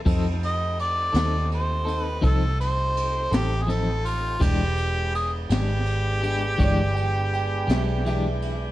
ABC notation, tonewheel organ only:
X:1
M:12/8
L:1/8
Q:3/8=55
K:Flyd
V:1 name="Tonewheel organ"
[A,C_EG]12 | [^G,B,D=g]12 |]